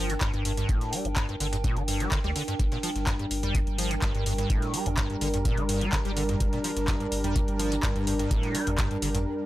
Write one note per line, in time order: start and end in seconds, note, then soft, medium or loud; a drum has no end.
0.00 0.17 G1 medium
0.00 0.11 F3 medium
0.00 9.26 D4 medium
0.00 9.26 A#4 medium
0.00 9.26 G5 medium
0.10 0.14 D3 medium
0.10 closed hi-hat soft
0.21 0.32 G2 medium
0.21 kick loud
0.21 snare loud
0.21 clap loud
0.21 closed hi-hat soft
0.21 tambourine medium
0.34 0.64 G1 medium
0.34 0.43 G2 medium
0.34 closed hi-hat soft
0.45 0.52 G2 medium
0.45 open hi-hat medium
0.45 tambourine medium
0.57 0.71 G2 medium
0.57 snare medium
0.57 closed hi-hat soft
0.69 0.78 G1 medium
0.69 0.94 A2 medium
0.69 kick loud
0.69 closed hi-hat soft
0.69 tambourine medium
0.81 snare soft
0.81 closed hi-hat soft
0.93 1.07 G3 loud
0.93 open hi-hat loud
0.93 tambourine medium
1.05 1.36 G1 medium
1.05 1.09 D3 medium
1.05 closed hi-hat soft
1.16 1.27 G2 medium
1.16 kick loud
1.16 snare loud
1.16 clap loud
1.16 closed hi-hat soft
1.16 tambourine medium
1.29 1.35 G2 medium
1.29 closed hi-hat soft
1.40 1.72 G1 medium
1.40 1.47 D3 medium
1.40 open hi-hat medium
1.40 tambourine medium
1.53 1.57 G2 medium
1.53 closed hi-hat soft
1.64 1.78 A#2 medium
1.64 kick loud
1.64 closed hi-hat soft
1.64 tambourine medium
1.77 2.07 G1 medium
1.77 1.83 D3 medium
1.77 closed hi-hat soft
1.88 2.02 G2 medium
1.88 open hi-hat loud
1.88 tambourine medium
2.00 2.10 G3 medium
2.00 snare soft
2.00 closed hi-hat soft
2.11 2.19 D3 medium
2.11 kick loud
2.11 snare loud
2.11 clap loud
2.11 closed hi-hat soft
2.11 tambourine medium
2.24 2.33 D2 medium
2.24 2.30 G3 loud
2.24 snare medium
2.24 closed hi-hat soft
2.36 2.42 D3 medium
2.36 open hi-hat medium
2.36 tambourine medium
2.48 2.54 G2 medium
2.48 snare soft
2.48 closed hi-hat soft
2.59 2.69 G1 medium
2.59 2.64 G2 medium
2.59 9.46 G3 medium
2.59 9.46 D4 medium
2.59 9.46 A#4 medium
2.59 kick loud
2.59 closed hi-hat soft
2.59 tambourine medium
2.72 2.78 A#2 medium
2.72 snare medium
2.72 closed hi-hat soft
2.83 2.90 F3 medium
2.83 open hi-hat loud
2.83 tambourine medium
2.96 3.26 G1 loud
2.96 snare soft
2.96 closed hi-hat soft
3.07 3.14 G2 medium
3.07 kick loud
3.07 snare loud
3.07 clap loud
3.07 closed hi-hat soft
3.07 tambourine medium
3.19 3.26 G2 medium
3.19 closed hi-hat soft
3.31 3.62 G1 medium
3.31 open hi-hat medium
3.31 tambourine medium
3.43 3.56 G3 medium
3.43 closed hi-hat soft
3.43 mid tom medium
3.55 3.59 A2 medium
3.55 kick loud
3.55 closed hi-hat soft
3.55 tambourine medium
3.67 3.98 G1 loud
3.67 closed hi-hat soft
3.78 3.92 F3 medium
3.78 open hi-hat loud
3.78 tambourine medium
3.91 3.95 D3 medium
3.91 closed hi-hat soft
4.02 4.12 G2 medium
4.02 kick loud
4.02 snare loud
4.02 clap loud
4.02 closed hi-hat soft
4.02 tambourine medium
4.15 4.45 G1 medium
4.15 4.24 G2 medium
4.15 closed hi-hat soft
4.26 4.33 G2 medium
4.26 open hi-hat medium
4.26 tambourine medium
4.38 4.51 G2 medium
4.38 snare medium
4.38 closed hi-hat soft
4.50 4.59 G1 medium
4.50 4.75 A2 medium
4.50 kick loud
4.50 closed hi-hat soft
4.50 tambourine medium
4.62 snare soft
4.62 closed hi-hat soft
4.74 4.88 G3 loud
4.74 open hi-hat loud
4.74 tambourine medium
4.86 5.17 G1 medium
4.86 4.90 D3 medium
4.86 closed hi-hat soft
4.86 mid tom medium
4.97 5.08 G2 medium
4.97 kick loud
4.97 snare loud
4.97 clap loud
4.97 closed hi-hat soft
4.97 tambourine medium
5.10 5.16 G2 medium
5.10 closed hi-hat soft
5.21 5.52 G1 medium
5.21 5.28 D3 medium
5.21 open hi-hat medium
5.21 tambourine medium
5.34 5.38 G2 medium
5.34 closed hi-hat medium
5.34 closed hi-hat soft
5.34 mid tom medium
5.45 5.59 A#2 loud
5.45 kick loud
5.45 closed hi-hat soft
5.45 tambourine medium
5.57 5.88 G1 medium
5.57 5.64 D3 loud
5.57 closed hi-hat soft
5.69 5.83 G2 medium
5.69 open hi-hat medium
5.69 tambourine medium
5.81 5.91 G3 medium
5.81 snare soft
5.81 closed hi-hat soft
5.92 6.00 D3 medium
5.92 kick loud
5.92 snare loud
5.92 clap loud
5.92 closed hi-hat soft
5.92 tambourine medium
6.05 6.36 G1 medium
6.05 6.11 G3 loud
6.05 snare medium
6.05 closed hi-hat soft
6.17 6.23 D3 medium
6.17 open hi-hat medium
6.17 tambourine medium
6.29 6.35 G2 medium
6.29 snare soft
6.29 closed hi-hat soft
6.29 mid tom medium
6.40 6.50 G1 medium
6.40 6.44 G2 medium
6.40 kick loud
6.40 closed hi-hat medium
6.40 tambourine medium
6.53 6.59 A#2 medium
6.53 snare medium
6.53 closed hi-hat soft
6.64 6.71 F3 medium
6.64 open hi-hat loud
6.64 tambourine medium
6.76 7.07 G1 medium
6.76 snare soft
6.76 closed hi-hat medium
6.88 6.95 G2 medium
6.88 kick loud
6.88 snare loud
6.88 clap loud
6.88 closed hi-hat medium
6.88 tambourine medium
7.00 7.07 G2 medium
7.00 closed hi-hat soft
7.12 7.43 G1 medium
7.12 open hi-hat medium
7.12 tambourine medium
7.24 7.37 G3 medium
7.24 closed hi-hat medium
7.24 mid tom medium
7.36 7.40 A2 medium
7.36 kick loud
7.36 closed hi-hat medium
7.36 tambourine medium
7.48 7.79 G1 loud
7.48 closed hi-hat soft
7.59 7.73 F3 medium
7.59 open hi-hat medium
7.59 tambourine medium
7.72 7.76 D3 medium
7.72 closed hi-hat soft
7.72 closed hi-hat medium
7.83 7.93 G2 medium
7.83 kick loud
7.83 snare loud
7.83 clap loud
7.83 closed hi-hat medium
7.83 tambourine medium
7.96 8.26 G1 medium
7.96 8.05 G2 medium
7.96 closed hi-hat soft
8.07 8.14 G2 medium
8.07 open hi-hat medium
8.07 tambourine medium
8.19 8.32 G2 medium
8.19 snare medium
8.19 closed hi-hat medium
8.31 8.40 G1 loud
8.31 8.56 A2 medium
8.31 kick loud
8.31 closed hi-hat medium
8.31 tambourine medium
8.43 snare soft
8.43 closed hi-hat soft
8.55 8.68 G3 loud
8.55 open hi-hat loud
8.55 tambourine medium
8.67 8.98 G1 medium
8.67 8.71 D3 medium
8.67 closed hi-hat medium
8.67 mid tom medium
8.78 8.89 G2 medium
8.78 kick loud
8.78 snare loud
8.78 clap loud
8.78 closed hi-hat medium
8.78 tambourine medium
8.91 8.97 G2 medium
8.91 closed hi-hat soft
9.02 9.26 G1 medium
9.02 9.09 D3 medium
9.02 open hi-hat medium
9.02 tambourine medium
9.15 9.18 G2 medium
9.15 closed hi-hat soft
9.15 closed hi-hat medium
9.15 mid tom medium